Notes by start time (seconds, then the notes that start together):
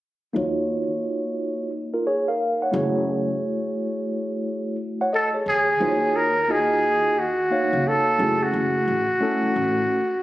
0.33 D#2 A#3 D#4 F4 F#4 C#5
1.94 F4 A#4
2.07 G#4 C#5
2.28 A#4 F5
2.62 C#5 F#5
2.72 F#1 A3 E4 F#4 G#4
2.76 C#5
5.01 C#5 F#5
5.13 A4 D#5
5.34 G#4 C#5
5.46 D#2 G#4
5.80 D#2 A#3 D#4 F4 F#4 C5
5.89 C#5
6.16 A#4
6.48 A#3 D#4 F4 F#4 G#4 D#5
7.19 F#4
7.51 A#3 D#4 F#4 C#5 F5
7.73 C#2
7.88 A4
8.18 F#1 A3 C#4 E4 F#4 G#4
8.43 F#4
8.53 F#1
8.88 A1
9.20 A3 C#4 E4 F#4 A4
9.43 muted upright bass stroke
9.56 A1